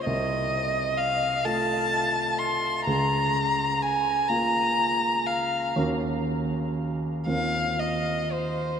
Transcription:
X:1
M:6/8
L:1/8
Q:3/8=42
K:Bbm
V:1 name="Violin"
e2 f =a2 c' | b2 a b2 f | z3 f e c |]
V:2 name="Grand piano"
C,,3 [=A,F]3 | D,,3 [B,F]3 | [E,,DG]3 [E,,CF]3 |]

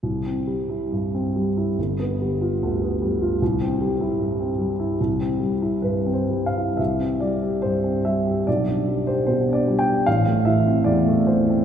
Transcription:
X:1
M:2/4
L:1/16
Q:1/4=72
K:C
V:1 name="Grand piano"
z8 | z8 | z8 | z4 (3B2 c2 f2 |
e2 d2 c2 e2 | d3 c (3c2 d2 g2 | f2 e2 d2 c2 |]
V:2 name="Grand piano" clef=bass
C,, C G, E G,, C G, E | G,,, B, G, F D,, B, G, F | C,, C G, E G,, C G, E | C,, C G, E G,, C G, E |
C,, C G, G G,, C G, G | B,,, D G, G B,, D G, G | A,,, A, E, C E,, A, E, C |]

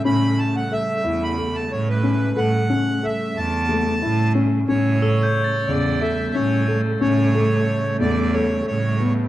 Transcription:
X:1
M:7/8
L:1/16
Q:1/4=90
K:Amix
V:1 name="Crotales"
z12 z2 | z12 z2 | z2 e' g' a'4- a' z4 z | z12 z2 |]
V:2 name="Accordion"
b2 a f e3 b2 a c B3 | f4 e2 a6 z2 | c6 d2 e2 c3 z | c6 d2 c2 c3 z |]
V:3 name="Grand piano"
C4 A2 E2 A4 C2 | A2 C2 A4 A,2 E2 C2 | C2 A4 C,2 A2 C2 A2 | C2 A4 A,2 A4 B,2 |]
V:4 name="String section" clef=bass
[C,G,A,]12- [C,G,A,]2- | [C,G,A,]12- [C,G,A,]2 | [C,G,A,]12- [C,G,A,]2- | [C,G,A,]12- [C,G,A,]2 |]
V:5 name="Cello" clef=bass
A,,2 z4 E,,4 A,,4 | A,,2 z4 E,,4 A,,4 | A,,6 E,,4 A,,4 | A,,6 E,,4 A,,4 |]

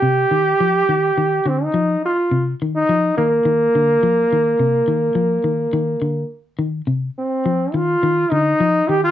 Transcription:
X:1
M:4/4
L:1/16
Q:"Swing 16ths" 1/4=105
K:Cm
V:1 name="Trombone"
G8- G2 C E3 F2- | F z2 E3 B,8- B,2- | B,12 z4 | z2 C4 F4 E4 G F |]
V:2 name="Clean electric guitar" clef=bass
C,2 E,2 F,2 E,2 E,2 D,2 F,2 z2 | C,2 E,2 F,2 E,2 E,2 D,2 F,2 E,2 | C,2 E,2 F,2 E,2 E,2 D,2 z2 E,2 | C,2 z2 F,2 E,2 E,2 D,2 F,2 E,2 |]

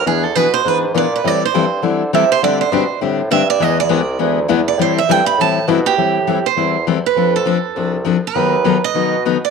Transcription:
X:1
M:4/4
L:1/8
Q:"Swing" 1/4=202
K:Am
V:1 name="Steel-string acoustic guitar"
^G A B c B z d B | d c3 z2 e c | d c3 z2 e d | ^d =d3 z3 d |
c e g b a2 z G- | G3 c3 z B- | B A4 z2 B- | B3 ^d3 z =d |]
V:2 name="Steel-string acoustic guitar"
[E,B,D^G] z [E,B,DG] z [E,B,DG] z [E,B,DG] z | [E,G,CEA] z [E,G,CEA] z [E,G,CEA] z [E,G,CEA] z | [D,G,CDG] z [D,G,CDG] z [D,G,CDG] z [D,G,CDG] z | [E,^G,B,E^G] z [E,G,B,EG] z [E,G,B,EG] z [E,G,B,EG] z |
[E,G,CEA] z [E,G,CEA] z [E,G,CEA] z [E,G,CEA] z | [E,G,CEA] z [E,G,CEA] z [E,G,CEA] z [E,G,CEA] z | [F,CDA] z [F,CDA] z [F,CDA] z [F,CDA] z | [^D,^F,B,^DA] z [D,F,B,DA] z [D,F,B,DA] z [D,F,B,DA] z |]
V:3 name="Bassoon" clef=bass
E,,2 B,,2 ^G,,2 _B,,2 | A,, z G,,2 D,2 C,2 | D,2 B,, B,, A,,2 G,,2 | E,,2 C,,2 D,,2 E,,2 |
A,, A,, G,,2 A,,2 B,,2 | A,,4 E,,4 | F,,4 C,,4 | ^D,,4 B,,4 |]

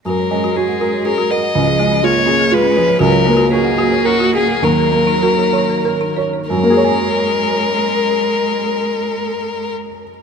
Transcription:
X:1
M:3/4
L:1/16
Q:1/4=102
K:F#
V:1 name="Marimba"
F c c F c f F c c F f f | C G G C G c C G G C c c | F c c F c f F c c F f f | D A A D A c D A A D c c |
z12 | z12 |]
V:2 name="Violin"
A4 G4 A2 d2- | d4 c4 B4 | A4 G4 F2 G2 | A8- A2 z2 |
A12- | A12 |]
V:3 name="Felt piano"
F,,2 G,2 F2 A2 G2 A2 | C,,2 G,2 E2 G2 E2 G2 | C,,2 A,2 F2 G2 A2 G2 | D,,2 A,2 F2 c2 A2 c2 |
[F,,F,A,Gcg]12- | [F,,F,A,Gcg]12 |]
V:4 name="Cello" clef=bass
G,12 | E,4 A,4 G,2 E,2 | F,2 G,2 A,8 | F,8- F,2 z2 |
G,12- | G,12 |]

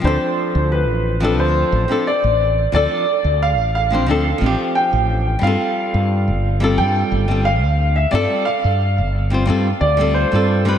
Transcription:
X:1
M:4/4
L:1/16
Q:1/4=89
K:Ddor
V:1 name="Grand piano"
c4 B4 c4 d4 | d4 f2 f4 z2 g4 | f8 g4 f3 e | d2 f8 d2 c4 |]
V:2 name="Nylon-string guitar"
[F,CDA]6- [F,CDA] [F,CDA]4 [F,CDA] z4 | [F,CDA]2 z4 z [F,CDc] [F,CDA] z [F,CDG]6 | [G,CFA]6- [G,CFA] [G,CFA]4 [G,CFA] z4 | [G,CFA]2 z4 z [G,CFc] [G,CFA] z2 [G,CFA]2 [G,CFA]2 [G,CFB] |]
V:3 name="Fretless electric bass" clef=bass
D,, z2 D,,2 A,,,3 D,, z A,,, z2 A,,,2 z | D,, z2 D,,2 A,,,3 D,, z A,,, z2 A,,,2 z | G,, z2 G,,2 G,,,3 G,, z G,,,3 D,,2 z | G,, z2 G,,2 G,,,3 G,, z D,,2 z G,,2 z |]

